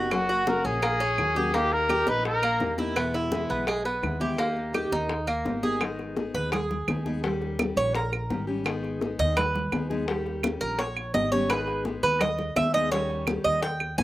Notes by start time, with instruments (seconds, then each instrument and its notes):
Already playing: upright bass F#1, steel-string acoustic guitar D#4 G4, cuban tres F#4
0.10 steel-string acoustic guitar C#3 F#3 A#3 C#4 F#4, cuban tres C#4, trumpet F#4, high bongo, high conga, claves
0.29 cuban tres F#4, high bongo, high conga
0.46 steel-string acoustic guitar C#3 F#3 A#3 C#4 F#4, trumpet A#4, high bongo, high conga
0.65 upright bass A#1, cuban tres C#4, trumpet G#4, high bongo, high conga
0.82 cuban tres A#3, muted steel-string acoustic guitar stroke, high bongo, high conga, claves
1.00 cuban tres C#4, high bongo, high conga
1.18 upright bass D#2, steel-string acoustic guitar F#3 A#3 C#4 F#4, high bongo, low bongo, high conga, claves
1.35 steel-string acoustic guitar F#3 A#3 C#4 F#4, cuban tres G4
1.53 steel-string acoustic guitar D#3 A#3 D#4 G4, cuban tres A#3, trumpet G4, high bongo, high conga
1.72 trumpet A#4, high bongo, high conga
1.89 steel-string acoustic guitar D#3 A#3 D#4 G4, cuban tres G4, high bongo, high conga, claves
2.07 upright bass A#1, cuban tres D#4, trumpet B4, high bongo, high conga
2.25 trumpet A#4, muted steel-string acoustic guitar stroke, high bongo, high conga
2.42 cuban tres A#3, high bongo, high conga, claves
2.60 upright bass E2, steel-string acoustic guitar D#3 A#3 D#4 G4, high bongo, low bongo, high conga
2.78 steel-string acoustic guitar A#3 D#4 G4, cuban tres E4, high conga
2.96 steel-string acoustic guitar B2 E3 G#3 B3 E4, cuban tres B3, high bongo, high conga, claves
3.14 cuban tres E4, high bongo, high conga
3.31 steel-string acoustic guitar B2 E3 G#3 B3 E4, high bongo, high conga
3.49 upright bass B1, cuban tres B3, high bongo, high conga
3.67 cuban tres G#3, muted steel-string acoustic guitar stroke, high bongo, high conga, claves
3.85 cuban tres B3, high bongo, high conga
4.02 upright bass D#2, steel-string acoustic guitar E3 G#3 B3 E4, high bongo, low bongo, high conga, claves
4.20 steel-string acoustic guitar E3 G#3 B3 E4, cuban tres G4, high conga
4.38 steel-string acoustic guitar D#3 A#3 D#4 G4, cuban tres A#3, high bongo
4.56 high bongo, high conga
4.73 steel-string acoustic guitar D#3 A#3 D#4 G4, cuban tres G4, high bongo, high conga, claves
4.92 upright bass D#2, cuban tres D#4, high bongo, high conga
5.09 muted steel-string acoustic guitar stroke, high bongo, high conga
5.27 cuban tres A#3, high bongo, high conga, claves
5.45 upright bass G#1, steel-string acoustic guitar D#3 A#3 D#4 G4, high bongo, low bongo, high conga
5.63 steel-string acoustic guitar A#3 D#4 G4, cuban tres G#4, high conga
5.81 steel-string acoustic guitar D#3 G#3 B3 D#4 G#4, high bongo, high conga, claves
5.99 high bongo, high conga
6.16 steel-string acoustic guitar G#3 B3 D#4 G#4, high bongo, high conga
6.34 upright bass D#2, cuban tres B4, high bongo
6.52 cuban tres G#4, muted steel-string acoustic guitar stroke, high bongo, high conga, low conga, claves
6.70 high bongo, high conga, low conga
6.87 upright bass D#2, steel-string acoustic guitar G#3 B3 D#4 G#4, high bongo, low bongo, high conga, claves
7.05 steel-string acoustic guitar G#3 B3 D#4 G#4, high conga
7.23 steel-string acoustic guitar D#3 G3 C#4 G4, high bongo, high conga
7.41 high bongo, high conga
7.59 steel-string acoustic guitar D#3 G3 C#4 G4, high bongo, high conga, claves
7.76 upright bass A#1, cuban tres C#5, high bongo, high conga
7.95 cuban tres A#4, muted steel-string acoustic guitar stroke, high bongo, high conga
8.12 high bongo, high conga, claves
8.30 upright bass G#1, steel-string acoustic guitar D#3 G3 C#4 G4, high bongo, low bongo, high conga
8.47 steel-string acoustic guitar G3 C#4 G4
8.65 steel-string acoustic guitar D#3 G#3 B3 D#4 G#4, high bongo, high conga, claves
8.84 high bongo, high conga
9.01 steel-string acoustic guitar G#3 B3 D#4 G#4, high bongo, high conga
9.19 upright bass D#2, cuban tres D#5, high bongo
9.36 cuban tres B4, muted steel-string acoustic guitar stroke, high bongo, high conga, low conga, claves
9.55 high bongo, high conga, low conga
9.72 upright bass D#2, steel-string acoustic guitar G#3 B3 D#4 G#4, high bongo, low bongo, high conga, claves
9.90 steel-string acoustic guitar G#3 B3 D#4 G#4, high conga
10.08 steel-string acoustic guitar D#3 G3 C#4 G4, high bongo, high conga
10.26 high bongo, high conga
10.43 steel-string acoustic guitar D#3 G3 C#4 G4, high bongo, high conga, claves
10.61 upright bass A#1, cuban tres A#4, high bongo, high conga
10.79 cuban tres C#5, muted steel-string acoustic guitar stroke, high bongo, high conga
10.96 high bongo, high conga, claves
11.14 upright bass G#1, steel-string acoustic guitar D#3 G3 C#4 G4, cuban tres D#5, high bongo, low bongo, high conga
11.32 steel-string acoustic guitar G3 C#4 G4, cuban tres C#5, high conga
11.50 steel-string acoustic guitar D#3 G#3 B3 D#4 G#4, cuban tres B4, high bongo, high conga, claves
11.68 high bongo, high conga
11.85 steel-string acoustic guitar G#3 B3 D#4 G#4, high bongo, high conga
12.03 upright bass D#2, cuban tres B4, high bongo
12.21 cuban tres D#5, muted steel-string acoustic guitar stroke, high bongo, high conga, low conga, claves
12.38 high bongo, high conga, low conga
12.56 upright bass D#2, steel-string acoustic guitar G#3 B3 D#4 G#4, cuban tres E5, high bongo, low bongo, high conga, claves
12.73 steel-string acoustic guitar G#3 B3 D#4 G#4, cuban tres D#5, high conga
12.91 steel-string acoustic guitar D#3 G3 C#4 G4, cuban tres C#5, high bongo, high conga
13.09 high bongo, high conga
13.27 steel-string acoustic guitar D#3 G3 C#4 G4, high bongo, high conga, claves
13.44 upright bass D#2, cuban tres D#5, high bongo, high conga
13.62 cuban tres G5, muted steel-string acoustic guitar stroke, high bongo, high conga
13.80 high bongo, high conga, claves
13.98 upright bass G#1, steel-string acoustic guitar D#3 G3 C#4 G4, cuban tres G#5, high bongo, low bongo, high conga